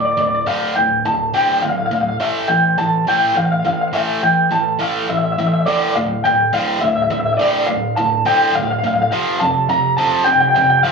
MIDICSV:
0, 0, Header, 1, 3, 480
1, 0, Start_track
1, 0, Key_signature, -1, "minor"
1, 0, Tempo, 576369
1, 391, Time_signature, 3, 2, 24, 8
1, 9093, End_track
2, 0, Start_track
2, 0, Title_t, "Clean electric guitar"
2, 0, Program_c, 0, 27
2, 41, Note_on_c, 0, 74, 65
2, 93, Note_off_c, 0, 74, 0
2, 96, Note_on_c, 0, 74, 58
2, 157, Note_off_c, 0, 74, 0
2, 171, Note_on_c, 0, 74, 68
2, 223, Note_off_c, 0, 74, 0
2, 226, Note_on_c, 0, 74, 54
2, 285, Note_off_c, 0, 74, 0
2, 288, Note_on_c, 0, 74, 60
2, 339, Note_off_c, 0, 74, 0
2, 342, Note_on_c, 0, 74, 53
2, 390, Note_off_c, 0, 74, 0
2, 393, Note_on_c, 0, 77, 86
2, 623, Note_off_c, 0, 77, 0
2, 626, Note_on_c, 0, 79, 69
2, 876, Note_off_c, 0, 79, 0
2, 879, Note_on_c, 0, 81, 83
2, 1115, Note_off_c, 0, 81, 0
2, 1119, Note_on_c, 0, 79, 82
2, 1347, Note_off_c, 0, 79, 0
2, 1351, Note_on_c, 0, 77, 80
2, 1408, Note_off_c, 0, 77, 0
2, 1411, Note_on_c, 0, 77, 57
2, 1475, Note_off_c, 0, 77, 0
2, 1480, Note_on_c, 0, 77, 73
2, 1545, Note_off_c, 0, 77, 0
2, 1548, Note_on_c, 0, 77, 68
2, 1606, Note_off_c, 0, 77, 0
2, 1609, Note_on_c, 0, 77, 77
2, 1673, Note_off_c, 0, 77, 0
2, 1676, Note_on_c, 0, 77, 58
2, 1733, Note_off_c, 0, 77, 0
2, 1736, Note_on_c, 0, 77, 67
2, 1800, Note_off_c, 0, 77, 0
2, 1838, Note_on_c, 0, 76, 89
2, 2067, Note_on_c, 0, 79, 81
2, 2084, Note_off_c, 0, 76, 0
2, 2314, Note_off_c, 0, 79, 0
2, 2318, Note_on_c, 0, 81, 87
2, 2564, Note_off_c, 0, 81, 0
2, 2568, Note_on_c, 0, 79, 92
2, 2804, Note_off_c, 0, 79, 0
2, 2808, Note_on_c, 0, 77, 79
2, 2868, Note_off_c, 0, 77, 0
2, 2871, Note_on_c, 0, 77, 64
2, 2928, Note_off_c, 0, 77, 0
2, 2931, Note_on_c, 0, 77, 74
2, 2991, Note_off_c, 0, 77, 0
2, 2994, Note_on_c, 0, 77, 63
2, 3050, Note_off_c, 0, 77, 0
2, 3054, Note_on_c, 0, 77, 80
2, 3104, Note_off_c, 0, 77, 0
2, 3107, Note_on_c, 0, 77, 68
2, 3168, Note_off_c, 0, 77, 0
2, 3176, Note_on_c, 0, 77, 66
2, 3226, Note_off_c, 0, 77, 0
2, 3229, Note_on_c, 0, 77, 61
2, 3289, Note_on_c, 0, 76, 89
2, 3291, Note_off_c, 0, 77, 0
2, 3522, Note_on_c, 0, 79, 78
2, 3530, Note_off_c, 0, 76, 0
2, 3743, Note_off_c, 0, 79, 0
2, 3762, Note_on_c, 0, 81, 88
2, 4006, Note_off_c, 0, 81, 0
2, 4009, Note_on_c, 0, 77, 87
2, 4240, Note_off_c, 0, 77, 0
2, 4244, Note_on_c, 0, 76, 80
2, 4304, Note_off_c, 0, 76, 0
2, 4308, Note_on_c, 0, 76, 66
2, 4363, Note_off_c, 0, 76, 0
2, 4366, Note_on_c, 0, 76, 70
2, 4428, Note_off_c, 0, 76, 0
2, 4432, Note_on_c, 0, 76, 67
2, 4482, Note_off_c, 0, 76, 0
2, 4486, Note_on_c, 0, 76, 76
2, 4547, Note_off_c, 0, 76, 0
2, 4553, Note_on_c, 0, 76, 62
2, 4607, Note_off_c, 0, 76, 0
2, 4610, Note_on_c, 0, 76, 74
2, 4666, Note_off_c, 0, 76, 0
2, 4670, Note_on_c, 0, 76, 57
2, 4713, Note_on_c, 0, 74, 91
2, 4731, Note_off_c, 0, 76, 0
2, 4956, Note_on_c, 0, 77, 82
2, 4962, Note_off_c, 0, 74, 0
2, 5193, Note_off_c, 0, 77, 0
2, 5196, Note_on_c, 0, 79, 93
2, 5442, Note_off_c, 0, 79, 0
2, 5446, Note_on_c, 0, 77, 96
2, 5668, Note_off_c, 0, 77, 0
2, 5672, Note_on_c, 0, 76, 84
2, 5726, Note_off_c, 0, 76, 0
2, 5730, Note_on_c, 0, 76, 68
2, 5791, Note_off_c, 0, 76, 0
2, 5794, Note_on_c, 0, 76, 78
2, 5846, Note_off_c, 0, 76, 0
2, 5849, Note_on_c, 0, 76, 73
2, 5911, Note_off_c, 0, 76, 0
2, 5926, Note_on_c, 0, 76, 78
2, 5988, Note_off_c, 0, 76, 0
2, 5995, Note_on_c, 0, 76, 68
2, 6039, Note_off_c, 0, 76, 0
2, 6043, Note_on_c, 0, 76, 74
2, 6100, Note_off_c, 0, 76, 0
2, 6103, Note_on_c, 0, 76, 64
2, 6137, Note_on_c, 0, 74, 96
2, 6165, Note_off_c, 0, 76, 0
2, 6385, Note_on_c, 0, 77, 90
2, 6394, Note_off_c, 0, 74, 0
2, 6630, Note_off_c, 0, 77, 0
2, 6633, Note_on_c, 0, 81, 101
2, 6857, Note_off_c, 0, 81, 0
2, 6881, Note_on_c, 0, 79, 101
2, 7120, Note_off_c, 0, 79, 0
2, 7124, Note_on_c, 0, 77, 95
2, 7182, Note_off_c, 0, 77, 0
2, 7185, Note_on_c, 0, 77, 78
2, 7250, Note_off_c, 0, 77, 0
2, 7255, Note_on_c, 0, 77, 87
2, 7313, Note_off_c, 0, 77, 0
2, 7317, Note_on_c, 0, 77, 77
2, 7381, Note_off_c, 0, 77, 0
2, 7385, Note_on_c, 0, 77, 93
2, 7442, Note_off_c, 0, 77, 0
2, 7445, Note_on_c, 0, 77, 75
2, 7507, Note_off_c, 0, 77, 0
2, 7510, Note_on_c, 0, 77, 83
2, 7575, Note_off_c, 0, 77, 0
2, 7586, Note_on_c, 0, 77, 116
2, 7824, Note_off_c, 0, 77, 0
2, 7827, Note_on_c, 0, 81, 99
2, 8053, Note_off_c, 0, 81, 0
2, 8075, Note_on_c, 0, 82, 112
2, 8296, Note_off_c, 0, 82, 0
2, 8302, Note_on_c, 0, 81, 114
2, 8528, Note_off_c, 0, 81, 0
2, 8531, Note_on_c, 0, 79, 102
2, 8588, Note_off_c, 0, 79, 0
2, 8591, Note_on_c, 0, 79, 79
2, 8654, Note_off_c, 0, 79, 0
2, 8663, Note_on_c, 0, 79, 94
2, 8726, Note_off_c, 0, 79, 0
2, 8732, Note_on_c, 0, 79, 77
2, 8779, Note_off_c, 0, 79, 0
2, 8783, Note_on_c, 0, 79, 87
2, 8836, Note_off_c, 0, 79, 0
2, 8840, Note_on_c, 0, 79, 75
2, 8903, Note_off_c, 0, 79, 0
2, 8910, Note_on_c, 0, 79, 86
2, 8969, Note_off_c, 0, 79, 0
2, 8972, Note_on_c, 0, 79, 73
2, 9017, Note_off_c, 0, 79, 0
2, 9020, Note_on_c, 0, 77, 111
2, 9093, Note_off_c, 0, 77, 0
2, 9093, End_track
3, 0, Start_track
3, 0, Title_t, "Distorted electric guitar"
3, 0, Program_c, 1, 30
3, 0, Note_on_c, 1, 38, 58
3, 0, Note_on_c, 1, 45, 78
3, 123, Note_off_c, 1, 38, 0
3, 126, Note_off_c, 1, 45, 0
3, 144, Note_on_c, 1, 38, 61
3, 148, Note_on_c, 1, 45, 70
3, 364, Note_off_c, 1, 38, 0
3, 366, Note_off_c, 1, 45, 0
3, 389, Note_on_c, 1, 38, 76
3, 395, Note_on_c, 1, 45, 78
3, 399, Note_on_c, 1, 50, 83
3, 616, Note_off_c, 1, 38, 0
3, 619, Note_off_c, 1, 45, 0
3, 621, Note_off_c, 1, 50, 0
3, 636, Note_on_c, 1, 38, 58
3, 638, Note_on_c, 1, 45, 69
3, 851, Note_off_c, 1, 38, 0
3, 852, Note_off_c, 1, 45, 0
3, 879, Note_on_c, 1, 38, 74
3, 880, Note_on_c, 1, 45, 75
3, 1092, Note_off_c, 1, 38, 0
3, 1093, Note_off_c, 1, 45, 0
3, 1112, Note_on_c, 1, 38, 81
3, 1115, Note_on_c, 1, 45, 80
3, 1118, Note_on_c, 1, 50, 87
3, 1339, Note_off_c, 1, 38, 0
3, 1340, Note_off_c, 1, 45, 0
3, 1342, Note_off_c, 1, 50, 0
3, 1350, Note_on_c, 1, 38, 67
3, 1352, Note_on_c, 1, 45, 75
3, 1568, Note_off_c, 1, 38, 0
3, 1570, Note_off_c, 1, 45, 0
3, 1591, Note_on_c, 1, 38, 64
3, 1594, Note_on_c, 1, 45, 69
3, 1809, Note_off_c, 1, 38, 0
3, 1811, Note_off_c, 1, 45, 0
3, 1831, Note_on_c, 1, 45, 80
3, 1835, Note_on_c, 1, 52, 81
3, 1841, Note_on_c, 1, 57, 89
3, 2059, Note_off_c, 1, 45, 0
3, 2061, Note_off_c, 1, 52, 0
3, 2064, Note_off_c, 1, 57, 0
3, 2070, Note_on_c, 1, 45, 65
3, 2072, Note_on_c, 1, 52, 69
3, 2289, Note_off_c, 1, 45, 0
3, 2290, Note_off_c, 1, 52, 0
3, 2313, Note_on_c, 1, 45, 66
3, 2315, Note_on_c, 1, 52, 82
3, 2531, Note_off_c, 1, 45, 0
3, 2532, Note_off_c, 1, 52, 0
3, 2556, Note_on_c, 1, 45, 89
3, 2558, Note_on_c, 1, 52, 87
3, 2565, Note_on_c, 1, 57, 94
3, 2782, Note_off_c, 1, 45, 0
3, 2783, Note_off_c, 1, 52, 0
3, 2787, Note_off_c, 1, 57, 0
3, 2795, Note_on_c, 1, 45, 71
3, 2797, Note_on_c, 1, 52, 79
3, 3012, Note_off_c, 1, 45, 0
3, 3013, Note_off_c, 1, 52, 0
3, 3038, Note_on_c, 1, 45, 61
3, 3040, Note_on_c, 1, 52, 65
3, 3254, Note_off_c, 1, 45, 0
3, 3255, Note_off_c, 1, 52, 0
3, 3272, Note_on_c, 1, 45, 73
3, 3277, Note_on_c, 1, 52, 76
3, 3281, Note_on_c, 1, 57, 85
3, 3500, Note_off_c, 1, 45, 0
3, 3503, Note_off_c, 1, 52, 0
3, 3505, Note_off_c, 1, 57, 0
3, 3516, Note_on_c, 1, 45, 69
3, 3520, Note_on_c, 1, 52, 72
3, 3733, Note_off_c, 1, 45, 0
3, 3735, Note_off_c, 1, 52, 0
3, 3759, Note_on_c, 1, 45, 59
3, 3764, Note_on_c, 1, 52, 85
3, 3974, Note_off_c, 1, 45, 0
3, 3977, Note_off_c, 1, 52, 0
3, 3992, Note_on_c, 1, 45, 72
3, 3998, Note_on_c, 1, 52, 89
3, 4001, Note_on_c, 1, 57, 88
3, 4220, Note_off_c, 1, 45, 0
3, 4223, Note_off_c, 1, 52, 0
3, 4225, Note_off_c, 1, 57, 0
3, 4240, Note_on_c, 1, 45, 66
3, 4240, Note_on_c, 1, 52, 70
3, 4455, Note_off_c, 1, 45, 0
3, 4455, Note_off_c, 1, 52, 0
3, 4483, Note_on_c, 1, 45, 64
3, 4486, Note_on_c, 1, 52, 77
3, 4696, Note_off_c, 1, 45, 0
3, 4698, Note_off_c, 1, 52, 0
3, 4720, Note_on_c, 1, 38, 77
3, 4724, Note_on_c, 1, 45, 73
3, 4730, Note_on_c, 1, 50, 89
3, 4944, Note_off_c, 1, 38, 0
3, 4946, Note_off_c, 1, 45, 0
3, 4949, Note_off_c, 1, 50, 0
3, 4966, Note_on_c, 1, 38, 66
3, 4970, Note_on_c, 1, 45, 78
3, 5178, Note_off_c, 1, 38, 0
3, 5179, Note_off_c, 1, 45, 0
3, 5204, Note_on_c, 1, 38, 69
3, 5207, Note_on_c, 1, 45, 81
3, 5417, Note_off_c, 1, 38, 0
3, 5418, Note_off_c, 1, 45, 0
3, 5437, Note_on_c, 1, 38, 79
3, 5441, Note_on_c, 1, 45, 99
3, 5447, Note_on_c, 1, 50, 95
3, 5662, Note_off_c, 1, 38, 0
3, 5664, Note_off_c, 1, 45, 0
3, 5668, Note_off_c, 1, 50, 0
3, 5677, Note_on_c, 1, 38, 73
3, 5678, Note_on_c, 1, 45, 80
3, 5892, Note_off_c, 1, 38, 0
3, 5893, Note_off_c, 1, 45, 0
3, 5914, Note_on_c, 1, 38, 70
3, 5918, Note_on_c, 1, 45, 70
3, 6131, Note_off_c, 1, 38, 0
3, 6133, Note_off_c, 1, 45, 0
3, 6155, Note_on_c, 1, 38, 83
3, 6158, Note_on_c, 1, 45, 84
3, 6164, Note_on_c, 1, 50, 88
3, 6381, Note_off_c, 1, 38, 0
3, 6382, Note_off_c, 1, 45, 0
3, 6385, Note_off_c, 1, 50, 0
3, 6396, Note_on_c, 1, 38, 65
3, 6401, Note_on_c, 1, 45, 71
3, 6612, Note_off_c, 1, 38, 0
3, 6614, Note_off_c, 1, 45, 0
3, 6638, Note_on_c, 1, 38, 73
3, 6639, Note_on_c, 1, 45, 91
3, 6852, Note_off_c, 1, 38, 0
3, 6853, Note_off_c, 1, 45, 0
3, 6874, Note_on_c, 1, 38, 90
3, 6883, Note_on_c, 1, 45, 91
3, 6887, Note_on_c, 1, 50, 95
3, 7100, Note_off_c, 1, 38, 0
3, 7104, Note_off_c, 1, 45, 0
3, 7106, Note_off_c, 1, 50, 0
3, 7118, Note_on_c, 1, 38, 80
3, 7123, Note_on_c, 1, 45, 82
3, 7332, Note_off_c, 1, 38, 0
3, 7334, Note_off_c, 1, 45, 0
3, 7358, Note_on_c, 1, 38, 81
3, 7362, Note_on_c, 1, 45, 81
3, 7572, Note_off_c, 1, 38, 0
3, 7573, Note_off_c, 1, 45, 0
3, 7593, Note_on_c, 1, 41, 81
3, 7598, Note_on_c, 1, 48, 85
3, 7603, Note_on_c, 1, 53, 102
3, 7818, Note_off_c, 1, 41, 0
3, 7821, Note_off_c, 1, 48, 0
3, 7823, Note_off_c, 1, 53, 0
3, 7836, Note_on_c, 1, 41, 72
3, 7841, Note_on_c, 1, 48, 82
3, 8050, Note_off_c, 1, 41, 0
3, 8052, Note_off_c, 1, 48, 0
3, 8074, Note_on_c, 1, 41, 68
3, 8077, Note_on_c, 1, 48, 87
3, 8289, Note_off_c, 1, 41, 0
3, 8290, Note_off_c, 1, 48, 0
3, 8312, Note_on_c, 1, 41, 92
3, 8315, Note_on_c, 1, 48, 92
3, 8320, Note_on_c, 1, 53, 105
3, 8537, Note_off_c, 1, 41, 0
3, 8539, Note_off_c, 1, 48, 0
3, 8541, Note_off_c, 1, 53, 0
3, 8554, Note_on_c, 1, 41, 80
3, 8557, Note_on_c, 1, 48, 78
3, 8768, Note_off_c, 1, 41, 0
3, 8770, Note_off_c, 1, 48, 0
3, 8791, Note_on_c, 1, 41, 75
3, 8796, Note_on_c, 1, 48, 83
3, 9006, Note_off_c, 1, 41, 0
3, 9009, Note_off_c, 1, 48, 0
3, 9030, Note_on_c, 1, 41, 91
3, 9036, Note_on_c, 1, 48, 95
3, 9042, Note_on_c, 1, 53, 111
3, 9093, Note_off_c, 1, 41, 0
3, 9093, Note_off_c, 1, 48, 0
3, 9093, Note_off_c, 1, 53, 0
3, 9093, End_track
0, 0, End_of_file